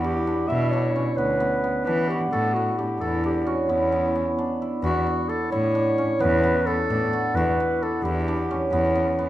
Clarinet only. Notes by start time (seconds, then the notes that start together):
0.04 G4
0.48 E5
0.70 C#5
1.17 B4
1.85 B4
2.08 G4
2.32 A4
2.54 F#4
2.78 G4
3.01 A4
3.26 G4
3.46 F#4
3.69 E4
4.84 F#4
5.29 A4
5.51 C#5
6.21 B4
6.66 A4
7.35 B4
7.83 A4
8.04 G4